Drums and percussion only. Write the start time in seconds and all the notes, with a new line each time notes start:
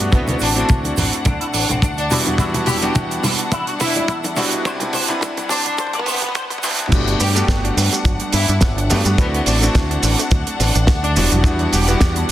0.12 kick, closed hi-hat, mid tom, shaker
0.27 closed hi-hat, high bongo, high conga, shaker
0.39 open hi-hat, shaker
0.56 closed hi-hat, shaker
0.69 kick, closed hi-hat, mid tom, high conga, shaker
0.84 closed hi-hat, high bongo, shaker
0.97 open hi-hat, low conga, shaker
1.13 closed hi-hat, shaker
1.25 kick, closed hi-hat, mid tom, high bongo, high conga, shaker
1.41 closed hi-hat
1.54 open hi-hat, shaker
1.70 closed hi-hat, high conga, shaker
1.82 kick, closed hi-hat, mid tom, high bongo, shaker
1.98 closed hi-hat, shaker
2.10 open hi-hat, high conga, shaker
2.26 closed hi-hat, high bongo, shaker
2.38 kick, closed hi-hat, mid tom, shaker
2.54 closed hi-hat, high conga, shaker
2.66 open hi-hat, mid tom, shaker
2.82 closed hi-hat, high bongo, shaker
2.95 kick, closed hi-hat, mid tom, high conga, shaker
3.11 closed hi-hat, shaker
3.23 open hi-hat, mid tom, high bongo, low conga, shaker
3.38 closed hi-hat, shaker
3.52 kick, closed hi-hat, mid tom, high conga, shaker
3.67 closed hi-hat
3.80 open hi-hat, mid tom, high bongo, shaker
3.95 closed hi-hat, high conga, low conga, shaker
4.08 kick, closed hi-hat, mid tom, shaker
4.24 closed hi-hat, high bongo, shaker
4.36 open hi-hat, mid tom, high conga, shaker
4.51 closed hi-hat, shaker
4.65 kick, closed hi-hat, mid tom, shaker
4.80 closed hi-hat, mid tom, high bongo, high conga, shaker
4.93 open hi-hat, mid tom, low conga, shaker
5.08 closed hi-hat, mid tom, shaker
5.21 kick, closed hi-hat, mid tom, high bongo, high conga, shaker
5.37 closed hi-hat, mid tom, shaker
5.49 open hi-hat, mid tom, low conga, shaker
5.65 closed hi-hat, mid tom, shaker
5.78 kick, closed hi-hat, mid tom, high bongo, high conga, shaker
5.87 mid tom
5.93 closed hi-hat, mid tom
5.99 mid tom
6.06 open hi-hat, mid tom, shaker
6.14 mid tom
6.22 closed hi-hat, mid tom, high bongo, high conga, shaker
6.29 mid tom
6.35 kick, closed hi-hat, mid tom, shaker
6.42 mid tom
6.50 closed hi-hat, mid tom, shaker
6.58 mid tom
6.63 open hi-hat, mid tom, high conga, shaker
6.71 mid tom
6.79 closed hi-hat, mid tom, high bongo, shaker
6.86 mid tom
6.92 kick, closed hi-hat, crash, shaker
7.08 closed hi-hat
7.20 open hi-hat, shaker
7.36 closed hi-hat, shaker
7.48 kick, snare, closed hi-hat, shaker
7.65 closed hi-hat
7.78 open hi-hat, shaker
7.93 closed hi-hat, shaker
8.05 kick, closed hi-hat, shaker
8.20 closed hi-hat
8.32 open hi-hat, shaker
8.48 closed hi-hat, shaker
8.61 kick, snare, closed hi-hat, shaker
8.78 closed hi-hat
8.90 open hi-hat, shaker
9.05 closed hi-hat, shaker
9.18 kick, closed hi-hat, shaker
9.34 closed hi-hat
9.46 open hi-hat, shaker
9.62 closed hi-hat, shaker
9.75 kick, snare, closed hi-hat, shaker
9.91 closed hi-hat
10.03 open hi-hat, shaker
10.19 closed hi-hat, shaker
10.31 kick, closed hi-hat, shaker
10.47 closed hi-hat
10.60 snare, open hi-hat, shaker
10.75 closed hi-hat, shaker
10.87 kick, snare, closed hi-hat, shaker
11.04 closed hi-hat
11.16 open hi-hat, shaker
11.32 closed hi-hat, shaker
11.44 kick, closed hi-hat, shaker
11.59 closed hi-hat
11.73 open hi-hat, shaker
11.88 closed hi-hat, shaker
12.00 kick, snare, closed hi-hat, shaker
12.16 closed hi-hat